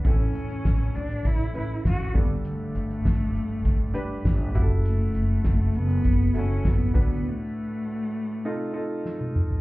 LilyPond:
<<
  \new Staff \with { instrumentName = "Grand piano" } { \time 4/4 \key a \mixolydian \tempo 4 = 100 <c' cis' e' a'>4. r4 <cis' e' b'>4 <d' g' a'>8~ | <d' g' a'>4 r4. <d' g' b'>4 <e' fis' g' a'>8~ | <e' fis' g' a'>4 r4. <e' fis' a'>4 <d' fis' b'>8~ | <d' fis' b'>4 r4 <ees' f' a'>8 <ees' f' a'>4 r8 | }
  \new Staff \with { instrumentName = "Grand piano" } { \clef bass \time 4/4 \key a \mixolydian <a, e>4. r2 <g, d>8~ | <g, d>4 r2 r8 cis8~ | cis4 r2 r8 a,8~ | a,4 r4 c4. r8 | }
  \new Staff \with { instrumentName = "Cello" } { \time 4/4 \key a \mixolydian cis'4. d'8 e'8 e'8 fis'8 b8 | a2.~ a8 r8 | a4. b4 cis'8 b8 b8 | a2. r4 | }
  \new Staff \with { instrumentName = "Upright bass" } { \clef bass \time 4/4 \key a \mixolydian a,,8 a,,8 a,,8 a,,8 a,,8 a,,8 a,,8 g,,8~ | g,,8 g,,8 g,,8 g,,8 g,,8 g,,8 g,,8 fis,,8~ | fis,,8 fis,,8 fis,,8 fis,,8 fis,,8 fis,,8 fis,,8 d,8 | r1 | }
  \new DrumStaff \with { instrumentName = "Drums" } \drummode { \time 4/4 <hh bd>8 hh16 hh16 <hh bd sn>8 <hh tomfh>16 hh16 <hh bd>8 hh8 <hh bd sn>16 tomfh16 <hh bd tomfh>8 | hh8 hh16 hh16 <hh bd sn>8 hh8 <hh bd>8 hh8 <hh bd sn>16 tomfh16 <hh bd tomfh>8 | hh8 hh8 <hh bd sn>8 hh16 hh16 <hh bd>8 hh8 <hh bd sn>16 tomfh16 <hh bd tomfh>8 | r4 r4 r4 sn16 tommh16 toml16 tomfh16 | }
>>